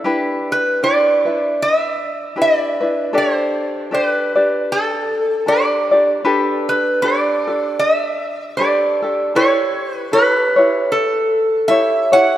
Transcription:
0.04 ukulele D4 E4 G4 B4
0.52 resonator guitar played with a steel bar B4
0.83 ukulele D4 E4 G4 B4, resonator guitar played with a steel bar D5
1.25 ukulele D4 E4 B4
1.62 resonator guitar played with a steel bar E5
2.36 ukulele D4 E4 G4 B4
2.42 resonator guitar played with a steel bar D5
2.81 ukulele D4 E4 B4
3.13 ukulele D4 G4 A4 D5
3.18 resonator guitar played with a steel bar C5
3.91 ukulele D4 G4 A4 D5, resonator guitar played with a steel bar C5
4.05 resonator guitar played with a steel bar B4
4.35 ukulele D4 G4 D5
4.72 resonator guitar played with a steel bar A4
5.46 ukulele D4 G4 A4 D5, resonator guitar played with a steel bar D5
5.91 ukulele D4 G4 D5
6.25 ukulele D4 G4 A4 B4
6.69 resonator guitar played with a steel bar B4
7.02 ukulele D4 G4 A4 B4, resonator guitar played with a steel bar D5
7.47 ukulele D4 G4 A4
7.79 resonator guitar played with a steel bar E5
8.57 ukulele D4 G4 A4 B4, resonator guitar played with a steel bar D5
9.02 ukulele D4 G4 A4
9.35 ukulele E4 G4 A4 C#5, resonator guitar played with a steel bar C#5
9.94 resonator guitar played with a steel bar B4
10.12 ukulele E4 G4 A4 C#5, resonator guitar played with a steel bar B4
10.56 ukulele E4 G4 C#5
10.92 resonator guitar played with a steel bar A4
11.68 ukulele E4 G4 A4 C#5, resonator guitar played with a steel bar E5
12.12 ukulele E4 G4 C#5, resonator guitar played with a steel bar F#5

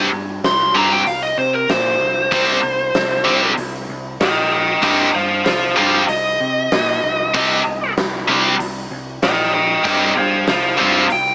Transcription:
0.13 picked electric bass G2
0.44 picked electric bass C2, lead electric guitar C6, snare, open hi-hat
0.74 picked electric bass G2, distorted electric guitar C3 G3 C4, lead electric guitar A#5
0.93 lead electric guitar G5
1.06 picked electric bass C2, lead electric guitar F5, open hi-hat
1.23 lead electric guitar D#5
1.38 picked electric bass C3, lead electric guitar C5
1.54 lead electric guitar A#4
1.69 picked electric bass A#2, lead electric guitar C5, snare, open hi-hat
2.00 picked electric bass C2
2.31 picked electric bass C2, distorted electric guitar C3 G3 C4, kick, open hi-hat
2.63 picked electric bass C2
2.95 picked electric bass C2, snare, open hi-hat
3.25 picked electric bass C2, distorted electric guitar C3 G3 C4, snare
3.58 picked electric bass C2, open hi-hat
3.89 picked electric bass C2
4.20 picked electric bass A#1, lead electric guitar D#5 G5, snare, open hi-hat
4.53 lead electric guitar D#5 G5
4.83 picked electric bass G2, distorted electric guitar C3 G3 C4, lead electric guitar D#5 G5, kick, open hi-hat
5.15 picked electric bass G2, lead electric guitar C5 F5
5.45 picked electric bass C2, lead electric guitar C5 F5, snare, open hi-hat
5.76 picked electric bass G2, distorted electric guitar C3 G3 C4, lead electric guitar C5 F5
6.08 picked electric bass C2, lead electric guitar D#5, open hi-hat
6.40 picked electric bass C3
6.72 picked electric bass A#2, snare, open hi-hat
7.04 picked electric bass C2
7.34 picked electric bass C2, distorted electric guitar C3 G3 C4, kick, open hi-hat
7.67 picked electric bass C2
7.97 picked electric bass C2, snare, open hi-hat
8.28 picked electric bass C2, distorted electric guitar C3 G3 C4
8.59 picked electric bass C2, open hi-hat
8.91 picked electric bass C2
9.23 picked electric bass A#1, lead electric guitar D#5 G5, snare, open hi-hat
9.53 lead electric guitar D#5 G5
9.84 picked electric bass G2, distorted electric guitar C3 G3 C4, lead electric guitar D#5 G5, kick, open hi-hat
10.17 picked electric bass G2, lead electric guitar C5 F5
10.47 picked electric bass C2, lead electric guitar C5 F5, snare, open hi-hat
10.78 picked electric bass G2, distorted electric guitar C3 G3 C4, lead electric guitar C5 F5
11.10 picked electric bass C2, lead electric guitar G5, open hi-hat

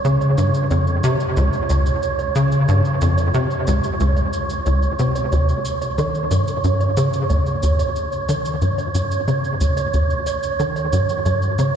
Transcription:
Already playing: synth texture C#5
0.05 analog synth bass C#3, cabasa
0.21 cabasa, low woodblock
0.38 analog synth bass G2, cabasa
0.54 cabasa
0.71 analog synth bass F2, cabasa, low woodblock
0.87 cabasa
1.03 analog synth bass C3, cabasa
1.20 cabasa, low woodblock
1.36 analog synth bass C#2, cabasa
1.53 cabasa
1.70 analog synth bass C#2, cabasa, low woodblock
1.86 cabasa
2.03 cabasa
2.19 cabasa, low woodblock
2.35 analog synth bass C#3, cabasa
2.52 cabasa
2.68 analog synth bass G2, cabasa, low woodblock
2.85 cabasa
3.01 analog synth bass F2, cabasa
3.18 cabasa, low woodblock
3.34 analog synth bass C3, cabasa
3.51 cabasa
3.67 analog synth bass C#2, cabasa, low woodblock
3.84 cabasa
4.00 analog synth bass C#2, cabasa
4.17 cabasa, low woodblock
4.33 cabasa
4.50 cabasa
4.66 analog synth bass C#2, cabasa, low woodblock
4.83 cabasa
4.99 analog synth bass C3, cabasa
5.16 cabasa, low woodblock
5.32 analog synth bass D#2, synth texture C#5, cabasa, low woodblock
5.49 cabasa
5.65 cabasa
5.82 cabasa, low woodblock
5.98 analog synth bass D#3, cabasa
6.15 cabasa
6.31 analog synth bass G2, cabasa, low woodblock
6.48 cabasa
6.64 analog synth bass G2, cabasa
6.80 cabasa, low woodblock
6.97 analog synth bass C#3, cabasa
7.13 cabasa
7.30 analog synth bass D#2, cabasa, low woodblock
7.46 cabasa
7.63 analog synth bass D#2, cabasa
7.79 cabasa, low woodblock
7.96 cabasa
8.12 cabasa
8.29 analog synth bass D#3, cabasa, low woodblock
8.45 cabasa
8.62 analog synth bass G2, cabasa
8.78 cabasa, low woodblock
8.95 analog synth bass G2, cabasa
9.11 cabasa
9.28 analog synth bass C#3, cabasa, low woodblock
9.44 cabasa
9.61 analog synth bass D#2, cabasa
9.77 cabasa, low woodblock
9.94 analog synth bass D#2, cabasa
10.10 cabasa
10.27 cabasa, low woodblock
10.43 cabasa
10.59 analog synth bass D#3, cabasa
10.76 cabasa, low woodblock
10.93 analog synth bass G2, cabasa
11.09 cabasa
11.26 analog synth bass G2, cabasa, low woodblock
11.42 cabasa
11.58 analog synth bass C#3, cabasa

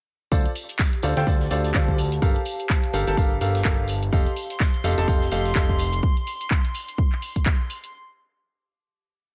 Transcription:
0.32 analog synth bass D2, grand piano F4 A4 C5 D5, ambient pad G4, kick, tambourine
0.46 closed hi-hat
0.51 ambient pad C5
0.55 open hi-hat, tambourine
0.69 closed hi-hat
0.79 kick, snare, clap, tambourine
0.86 ambient pad A5
0.93 closed hi-hat
1.03 analog synth bass D2, grand piano F4 A4 C5 D5, open hi-hat, tambourine
1.17 analog synth bass D2, grand piano F4 A4 C5 G5, ambient pad F5, snare, closed hi-hat
1.27 analog synth bass D2, grand piano F4 A4 C5 D5, kick, tambourine
1.40 snare
1.51 analog synth bass D2, grand piano F4 A4 C5 D5, open hi-hat, tambourine
1.65 snare, closed hi-hat
1.74 analog synth bass D2, grand piano F4 A4 C5 D5, kick, snare, clap, tambourine
1.88 kick
1.98 open hi-hat, tambourine
2.12 closed hi-hat
2.22 analog synth bass G1, grand piano G4 A4 A#4 F5, kick, tambourine
2.36 closed hi-hat
2.45 open hi-hat, tambourine
2.60 closed hi-hat
2.69 kick, snare, clap, tambourine
2.84 closed hi-hat
2.93 analog synth bass G1, grand piano G4 A4 A#4 F5, open hi-hat, tambourine
3.07 analog synth bass G1, grand piano G4 A4 A#4 A5, snare, closed hi-hat
3.17 analog synth bass G1, grand piano G4 A4 A#4 F5, kick, tambourine
3.41 analog synth bass G1, grand piano G4 A4 A#4 F5, open hi-hat, tambourine
3.55 snare, closed hi-hat
3.65 analog synth bass G1, grand piano G4 A4 A#4 F5, kick, snare, clap, tambourine
3.87 open hi-hat, tambourine
4.03 closed hi-hat
4.13 analog synth bass F1, grand piano G4 A4 D#5 F5, string section C6, kick, tambourine
4.27 closed hi-hat
4.36 open hi-hat, tambourine
4.50 closed hi-hat
4.60 kick, snare, clap, tambourine
4.74 closed hi-hat
4.84 analog synth bass F1, grand piano G4 A4 D#5 F5, open hi-hat, tambourine
4.98 analog synth bass F1, grand piano G4 A4 D#5 A5, snare, closed hi-hat
5.08 grand piano G4 A4 D#5 F5, kick, tambourine
5.21 snare
5.31 analog synth bass F1, grand piano G4 A4 D#5 F5, open hi-hat, tambourine
5.45 snare, closed hi-hat
5.55 analog synth bass F1, grand piano G4 A4 D#5 F5, kick, snare, clap, tambourine
5.69 kick
5.79 open hi-hat, tambourine
5.93 closed hi-hat
6.03 kick
6.17 closed hi-hat
6.27 open hi-hat
6.41 closed hi-hat
6.51 kick, clap
6.65 closed hi-hat
6.75 open hi-hat
6.88 closed hi-hat
6.98 kick
7.12 clap
7.22 open hi-hat
7.36 kick, closed hi-hat
7.46 kick, clap
7.70 open hi-hat
7.84 closed hi-hat

